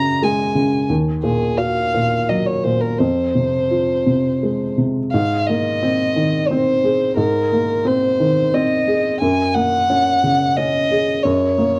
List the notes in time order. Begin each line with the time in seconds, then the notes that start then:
Already playing: F#2 C#3 F#4 A#5
0.22 G#3 G#5
0.55 C#3
0.90 D#2
1.23 A#2 G#4
1.58 F#4 F5
1.94 A#2
2.29 F#3 D#5
2.46 C#5
2.64 A#2 C5
2.81 A#4
2.99 F2 C5
3.35 C3
3.71 F4
4.06 C3
4.43 G#3
4.78 C3
5.12 G#2 F5
5.47 A#3 D#5
5.83 C4
6.16 D#3
6.48 C4 C5
6.84 G#4
7.17 G#2 A#4
7.52 A#3
7.85 C4 C5
8.20 D#3
8.54 C4 D#5
8.88 G#4
9.21 F#2 G#5
9.54 A#3 F#5
9.90 C#4
10.24 C#3
10.56 C#4 D#5
10.91 G#4
11.23 F#2 C#5
11.58 A#3